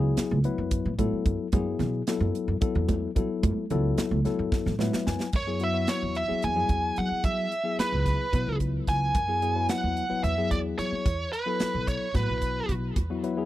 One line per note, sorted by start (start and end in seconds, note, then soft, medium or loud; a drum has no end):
0.00 0.10 C#2 medium
0.00 0.38 F#3 medium
0.00 0.38 B3 medium
0.00 0.38 E4 medium
0.00 0.38 G#4 loud
0.17 muted upright bass stroke soft
0.17 snare loud
0.17 closed hi-hat medium
0.31 0.41 C#2 medium
0.31 high conga medium
0.44 0.92 F#3 medium
0.44 0.92 B3 medium
0.44 0.93 E4 medium
0.44 0.93 B4 loud
0.44 muted upright bass stroke soft
0.44 closed hi-hat medium
0.58 0.78 F#2 medium
0.71 kick medium
0.71 closed hi-hat medium
0.71 low conga soft
0.85 1.06 A2 medium
0.99 1.47 F#3 medium
0.99 1.47 B3 medium
0.99 1.47 E4 medium
0.99 1.47 A4 medium
0.99 kick medium
0.99 closed hi-hat medium
0.99 high conga medium
0.99 low conga soft
1.13 muted upright bass stroke soft
1.26 1.36 F#2 medium
1.26 kick medium
1.26 closed hi-hat medium
1.52 1.73 F#2 loud
1.52 2.01 F#3 medium
1.52 2.01 B3 medium
1.52 2.01 E4 medium
1.52 2.02 G#4 medium
1.52 kick medium
1.52 closed hi-hat medium
1.52 high conga medium
1.52 low conga soft
1.79 2.00 B2 medium
1.79 snare soft
1.79 closed hi-hat medium
1.79 low conga medium
2.07 2.56 F#3 medium
2.07 2.56 B3 medium
2.07 2.56 E4 medium
2.07 2.56 A4 medium
2.07 snare loud
2.07 closed hi-hat medium
2.20 2.31 F#2 medium
2.20 high conga medium
2.35 closed hi-hat medium
2.48 2.58 F#2 medium
2.61 3.09 F#3 medium
2.61 3.10 B3 medium
2.61 3.10 E4 medium
2.61 3.10 A4 medium
2.61 muted upright bass stroke soft
2.61 kick loud
2.61 closed hi-hat medium
2.61 low conga soft
2.75 3.06 E2 medium
2.75 low conga medium
2.89 kick medium
2.89 closed hi-hat medium
2.89 high conga medium
2.89 low conga soft
3.15 3.64 F#3 medium
3.15 3.26 F#3 medium
3.15 3.64 B3 medium
3.15 3.64 E4 medium
3.15 3.65 A4 medium
3.15 kick medium
3.15 closed hi-hat medium
3.43 3.54 F#2 medium
3.43 kick loud
3.43 closed hi-hat medium
3.43 high conga medium
3.58 muted upright bass stroke soft
3.70 3.91 C#2 medium
3.70 4.19 F#3 medium
3.70 4.19 B3 medium
3.70 4.19 E4 medium
3.70 4.19 A4 loud
3.70 closed hi-hat medium
3.70 low conga medium
3.98 muted upright bass stroke soft
3.98 snare loud
3.98 closed hi-hat medium
4.11 4.21 C#2 medium
4.11 high conga medium
4.25 4.73 F#3 medium
4.25 4.73 B3 medium
4.25 4.73 E4 medium
4.25 4.74 A4 medium
4.25 muted upright bass stroke soft
4.25 snare soft
4.25 closed hi-hat medium
4.25 low conga soft
4.39 4.59 F#2 medium
4.39 low conga soft
4.52 kick medium
4.52 snare soft
4.66 4.87 A2 medium
4.66 snare soft
4.66 low conga medium
4.79 5.28 F#3 medium
4.79 5.28 B3 medium
4.79 5.28 E4 medium
4.79 5.28 B4 medium
4.79 5.05 E5 medium
4.79 snare medium
4.79 high conga medium
4.93 muted upright bass stroke soft
4.93 snare medium
5.07 5.17 F#2 medium
5.07 5.32 G#5 medium
5.07 snare medium
5.20 snare medium
5.33 5.85 F#2 medium
5.33 5.63 C#5 medium
5.33 kick medium
5.33 crash medium
5.47 5.59 F#3 medium
5.47 5.59 B3 medium
5.47 5.59 E4 medium
5.47 5.59 G#4 medium
5.60 5.73 F#3 medium
5.60 5.73 B3 medium
5.60 5.73 E4 medium
5.60 5.73 F#4 medium
5.60 5.90 E5 medium
5.60 closed hi-hat medium
5.74 6.22 F#3 medium
5.74 6.22 B3 medium
5.74 6.23 E4 medium
5.74 6.22 F#4 medium
5.87 6.17 C#5 medium
5.87 snare medium
5.87 closed hi-hat medium
6.03 6.23 E2 medium
6.15 6.44 E5 medium
6.15 closed hi-hat medium
6.28 6.53 F#3 medium
6.28 6.53 B3 medium
6.28 6.53 E4 medium
6.28 6.53 G#4 medium
6.28 muted upright bass stroke soft
6.42 6.58 E2 medium
6.42 6.99 G#5 medium
6.42 closed hi-hat medium
6.55 6.67 F#2 medium
6.55 7.52 F#3 medium
6.55 7.52 B3 medium
6.55 7.53 E4 medium
6.55 7.53 G#4 medium
6.69 6.90 E2 medium
6.69 kick medium
6.69 closed hi-hat soft
6.96 7.08 F#3 medium
6.96 7.23 F#5 medium
6.96 closed hi-hat soft
7.11 muted upright bass stroke soft
7.24 7.45 F#3 medium
7.24 7.75 E5 medium
7.24 kick medium
7.24 closed hi-hat medium
7.52 closed hi-hat medium
7.64 8.25 F#3 medium
7.64 8.25 B3 medium
7.64 8.25 E4 medium
7.64 8.25 G#4 medium
7.79 8.57 B4 medium
7.79 muted upright bass stroke soft
7.79 snare loud
7.79 closed hi-hat medium
7.92 8.13 C#2 medium
8.06 kick medium
8.06 snare soft
8.06 closed hi-hat medium
8.32 8.43 B2 medium
8.32 9.17 F#3 medium
8.32 9.18 B3 medium
8.32 9.18 E4 medium
8.32 9.18 B4 medium
8.32 kick medium
8.32 closed hi-hat medium
8.47 8.77 C#2 medium
8.60 kick medium
8.60 closed hi-hat soft
8.87 9.08 C#2 medium
8.87 9.66 G#5 medium
8.87 kick medium
8.87 snare soft
8.87 closed hi-hat medium
9.15 9.66 F#2 medium
9.15 kick medium
9.15 closed hi-hat medium
9.27 9.40 F#3 medium
9.27 9.40 B3 medium
9.27 9.40 E4 medium
9.27 9.41 G#4 medium
9.42 9.54 F#3 medium
9.42 9.54 B3 medium
9.42 9.54 E4 medium
9.42 9.54 G#4 medium
9.42 closed hi-hat medium
9.55 10.04 F#3 medium
9.55 10.04 B3 medium
9.55 10.04 E4 medium
9.55 10.04 B4 medium
9.69 10.23 F#5 medium
9.69 snare medium
9.69 closed hi-hat medium
9.84 10.04 E2 medium
9.97 closed hi-hat medium
10.09 10.34 F#3 medium
10.09 10.34 B3 medium
10.09 10.34 E4 medium
10.09 10.34 B4 medium
10.09 muted upright bass stroke soft
10.24 10.38 E2 medium
10.24 10.49 E5 medium
10.24 closed hi-hat medium
10.37 10.48 F#2 medium
10.37 11.05 F#3 medium
10.37 11.06 B3 medium
10.37 11.06 E4 medium
10.37 11.06 G#4 medium
10.51 10.72 E2 medium
10.51 10.58 D5 medium
10.51 kick medium
10.51 closed hi-hat medium
10.79 10.89 F#3 medium
10.79 11.32 C#5 medium
10.79 snare soft
10.79 closed hi-hat soft
10.92 muted upright bass stroke soft
11.06 11.26 E2 medium
11.06 kick medium
11.06 closed hi-hat medium
11.33 11.88 B4 medium
11.33 closed hi-hat soft
11.46 12.07 F#3 medium
11.46 12.06 B3 medium
11.46 12.07 E4 medium
11.46 12.07 A4 medium
11.60 muted upright bass stroke soft
11.60 snare medium
11.60 closed hi-hat medium
11.74 11.95 B1 medium
11.87 12.13 C#5 medium
11.87 kick medium
11.87 closed hi-hat medium
12.14 12.25 A2 medium
12.14 12.99 F#3 medium
12.14 12.98 B3 medium
12.14 12.99 E4 medium
12.14 12.99 F#4 medium
12.14 12.72 B4 medium
12.14 kick medium
12.14 snare soft
12.14 closed hi-hat medium
12.29 12.59 B1 medium
12.42 kick medium
12.42 closed hi-hat soft
12.69 12.90 B1 medium
12.69 kick medium
12.69 closed hi-hat medium
12.96 13.45 E2 medium
12.96 kick medium
12.96 closed hi-hat medium
13.10 13.22 F#3 medium
13.10 13.22 B3 medium
13.10 13.22 E4 medium
13.10 13.22 F#4 medium
13.23 13.35 F#3 medium
13.23 13.35 B3 medium
13.23 13.36 E4 medium
13.23 13.36 B4 medium
13.23 closed hi-hat medium
13.37 13.45 F#3 medium
13.37 13.45 B3 medium
13.37 13.45 E4 medium
13.37 13.45 G#4 medium